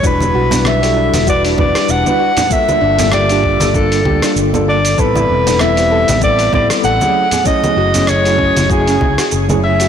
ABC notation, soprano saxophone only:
X:1
M:4/4
L:1/8
Q:"Swing 16ths" 1/4=97
K:Em
V:1 name="Soprano saxophone"
B2 e2 d d f2 | e2 d2 A2 z d | B2 e2 d d f2 | ^d2 ^c2 ^G2 z e |]